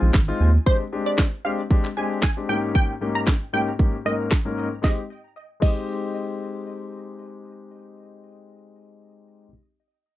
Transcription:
0.02 analog synth bass A#1
0.14 analog synth bass G#1, kick, snare, clap
0.28 grand piano G#3 C4 D#4 F4
0.40 analog synth bass D#2
0.66 grand piano G#3 C4 D4 G4, synth pluck C5, kick
0.92 grand piano G#3 C4 D4 G4
1.06 synth pluck D5
1.18 kick, snare, clap
1.45 grand piano G#3 C4 D4 G4, synth pluck F5
1.71 grand piano G#3 C4 D4 G4, kick
1.85 clap
1.97 grand piano G#3 C4 D4 G4, synth pluck G#5
2.22 synth pluck G#5, kick, snare, clap
2.37 grand piano G#3 C4 D4 G4
2.49 grand piano G#2 A#3 C#4 D#4 G4, synth pluck G5
2.75 synth pluck G5, kick
3.01 grand piano G#2 A#3 C#4 D#4 G4
3.15 synth pluck A#5
3.27 kick, snare, clap
3.53 grand piano G#2 A#3 C#4 D#4 G4, synth pluck G5
3.79 grand piano G#2 A#3 C#4 D#4 G4, kick
4.05 grand piano G#2 A#3 C#4 D#4 A#4, synth pluck D#5
4.31 kick, snare, clap
4.45 grand piano G#2 A#3 C#4 D#4 A#4
4.82 grand piano G#3 C4 D#4, synth pluck D#5, kick, snare
4.86 grand piano G4
5.60 grand piano G#3 C4 D#4 G4, synth pluck D#5, kick, crash

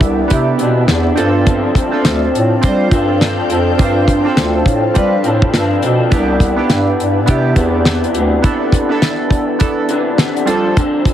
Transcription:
Already playing: clean electric guitar E3 B3 D4, synth keys B3 D4 E4 G4, ambient pad B3 D5 E5
0.01 bass clarinet C2, kick, closed hi-hat
0.28 bass clarinet C3, synth keys B3 D4 E4 G4, kick, closed hi-hat
0.58 bass clarinet B2, clean electric guitar C3 E3 B3 D4, closed hi-hat
0.87 bass clarinet E2, clean electric guitar C3 E3 B3, snare, closed hi-hat
0.92 clean electric guitar D4
1.16 bass clarinet G2, clean electric guitar F3 C4 D4, synth keys C4 D4 F4 A4, ambient pad A4 F5 G5, closed hi-hat
1.20 clean electric guitar A4
1.45 clean electric guitar G2 D3 F3 C4 D4 A4, kick, closed hi-hat
1.75 kick, closed hi-hat
1.92 synth keys C4 D4 F4 A4, clean electric guitar C4 D4 A4
1.96 clean electric guitar F3
2.04 bass clarinet D2, snare, closed hi-hat
2.34 bass clarinet A2, closed hi-hat
2.61 bass clarinet G3, synth keys C4 D4 F4 C5, kick, closed hi-hat
2.91 bass clarinet G2, clean electric guitar F3 C4 D4 A4, kick, closed hi-hat
3.20 clean electric guitar F3 C4 D4, snare, closed hi-hat
3.24 clean electric guitar A4
3.50 bass clarinet F2, clean electric guitar F3 C4 D4 A4, closed hi-hat
3.78 clean electric guitar G2 D3 F3 C4 D4 A4, bass clarinet G2, synth keys C4 D4 F4 C5, kick, closed hi-hat
4.08 kick, closed hi-hat
4.24 synth keys C4 D4 F4 A4, clean electric guitar D4 A4
4.28 clean electric guitar F3 C4
4.37 bass clarinet D2, snare, closed hi-hat
4.66 bass clarinet A2, kick, closed hi-hat
4.94 bass clarinet G3, synth keys C4 D4 F4 B4, kick, closed hi-hat
5.24 bass clarinet A2, clean electric guitar F3 C4 D4 A4, closed hi-hat
5.42 kick
5.53 bass clarinet G2, clean electric guitar F3 C4 D4 A4, snare, closed hi-hat
5.82 bass clarinet B2, clean electric guitar F3 C4 D4, closed hi-hat
5.86 clean electric guitar A4
6.10 bass clarinet C2, clean electric guitar C3 E3 B3 D4, synth keys B3 D4 E4 G4, ambient pad B4 D5 E5, kick, closed hi-hat
6.40 kick, closed hi-hat
6.56 synth keys B3 D4 E4 G4, clean electric guitar B3 D4
6.61 clean electric guitar E3
6.70 bass clarinet G2, snare, closed hi-hat
6.99 bass clarinet G2, closed hi-hat
7.26 bass clarinet C3, synth keys B3 D4 E4 G4, kick, closed hi-hat
7.56 bass clarinet E2, clean electric guitar C3 E3 B3, kick, closed hi-hat
7.60 clean electric guitar D4
7.85 clean electric guitar C3 E3 B3 D4, snare, closed hi-hat
8.04 closed hi-hat
8.14 bass clarinet D2, clean electric guitar C3 E3 B3, closed hi-hat
8.18 clean electric guitar D4
8.42 clean electric guitar C3 E3 B3 D4, synth keys B3 D4 E4 A4, kick, closed hi-hat
8.72 kick, closed hi-hat
8.89 synth keys B3 D4 E4 A4, clean electric guitar B3 D4
8.94 clean electric guitar E3
9.02 snare, closed hi-hat
9.30 kick, closed hi-hat
9.59 synth keys B3 D4 E4 A4, kick, closed hi-hat
9.89 clean electric guitar C3 E3 B3, closed hi-hat
9.93 clean electric guitar D4
10.18 clean electric guitar C3 E3 B3 D4, snare, closed hi-hat
10.37 closed hi-hat
10.45 clean electric guitar F3 C4, synth keys G3 C4 D4 F4 A4, closed hi-hat
10.50 clean electric guitar D4 A4
10.76 clean electric guitar G2 D3 F3 C4 D4 A4, kick, closed hi-hat
11.05 kick, closed hi-hat

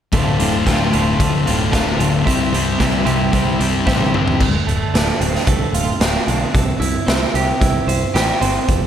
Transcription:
0.12 picked electric bass D1, clean electric guitar D2 A2 D3 A3 C4 F4, kick, closed hi-hat
0.39 picked electric bass D1, distorted electric guitar D2 A2, clean electric guitar D3 A3 C4 F4, closed hi-hat
0.65 picked electric bass D1, distorted electric guitar D2 A2, clean electric guitar D3 A3 C4 F4, kick, snare, closed hi-hat
0.93 picked electric bass D1, clean electric guitar D2 A2 D3 A3 C4 F4, closed hi-hat
1.19 picked electric bass D1, distorted electric guitar D2 A2, clean electric guitar D3 A3 C4 F4, kick, closed hi-hat
1.46 picked electric bass D1, distorted electric guitar D2 A2, clean electric guitar D3 A3 C4 F4, closed hi-hat
1.71 picked electric bass D1, clean electric guitar D2 A2 D3 A3 C4 F4, kick, snare, closed hi-hat
1.98 picked electric bass D1, distorted electric guitar D2 A2, clean electric guitar D3 A3 C4 F4, closed hi-hat
2.24 picked electric bass C2, clean electric guitar C3 G3 C4 E4 G4 C5, kick, closed hi-hat
2.53 picked electric bass C2, distorted electric guitar C3 G3, clean electric guitar C4 E4 G4 C5, closed hi-hat
2.78 picked electric bass C2, distorted electric guitar C3 G3, clean electric guitar C4 E4 G4 C5, kick, snare, closed hi-hat
3.05 picked electric bass C2, clean electric guitar C3 G3 C4 E4 G4 C5, closed hi-hat
3.32 picked electric bass C2, distorted electric guitar C3 G3, clean electric guitar C4 E4 G4 C5, kick, closed hi-hat
3.59 picked electric bass C2, distorted electric guitar C3 G3, clean electric guitar C4 E4 G4 C5, closed hi-hat
3.86 picked electric bass A1, clean electric guitar C3 G3 C4 E4 G4 C5, kick, snare
4.00 high tom
4.12 distorted electric guitar C3 G3, clean electric guitar C4 E4 G4 C5, mid tom
4.28 floor tom
4.40 picked electric bass D1, clean electric guitar D2, kick, crash
4.67 picked electric bass D1, clean electric guitar A3, closed hi-hat
4.94 picked electric bass D1, clean electric guitar D3, snare, closed hi-hat
5.20 picked electric bass D1, clean electric guitar C4, closed hi-hat
5.35 snare
5.47 picked electric bass C2, clean electric guitar A3, kick, closed hi-hat
5.73 picked electric bass D1, clean electric guitar F4, closed hi-hat
6.00 picked electric bass D1, clean electric guitar C4, snare, closed hi-hat
6.27 picked electric bass B1, clean electric guitar D3, closed hi-hat
6.53 picked electric bass C2, clean electric guitar C3, kick, closed hi-hat
6.80 picked electric bass C2, clean electric guitar E4, closed hi-hat
7.07 picked electric bass C2, clean electric guitar C4, snare, closed hi-hat
7.34 picked electric bass C2, clean electric guitar G4, closed hi-hat
7.61 picked electric bass C2, clean electric guitar E4, kick, closed hi-hat
7.87 picked electric bass C2, clean electric guitar C5, closed hi-hat
8.14 picked electric bass A1, clean electric guitar G4, snare, closed hi-hat
8.41 picked electric bass G1, clean electric guitar C4, closed hi-hat
8.68 picked electric bass F1, clean electric guitar F2, kick, closed hi-hat

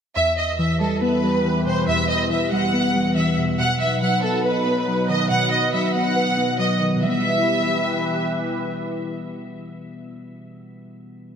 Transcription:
0.16 synth keys E2, analog synth pad E2 E3 G4 B4, violin section E5
0.37 violin section D#5
0.59 synth keys E3, violin section E5
0.80 synth keys G3, violin section A4
1.02 synth keys B3, violin section B4
1.23 synth keys G3
1.45 synth keys E3
1.66 synth keys B2, violin section C5
1.88 synth keys E2, violin section E5
2.09 violin section D#5
2.30 synth keys E3, violin section E5
2.52 synth keys G3, violin section F#5
2.73 synth keys B3
2.95 synth keys G3
3.16 synth keys E3, violin section E5
3.38 synth keys B2
3.59 analog synth pad B2 F#3 D#4 B4, synth keys B2, violin section F#5
3.80 violin section E5
4.02 synth keys F#3, violin section F#5
4.23 synth keys B3, violin section A4
4.45 synth keys B4, violin section B4
4.66 synth keys B3
4.88 synth keys F#3
5.09 synth keys D#3, violin section D#5
5.30 synth keys B2, violin section F#5
5.52 violin section D#5
5.73 synth keys F#3, violin section E5
5.95 synth keys B3, violin section F#5
6.16 synth keys B4
6.37 synth keys B3
6.59 synth keys F#3, violin section D#5
6.81 synth keys D#3
6.96 synth keys B2
7.00 synth keys E3 G3, analog synth pad E3 E4 G4 B4, violin section E5
7.08 synth keys B3

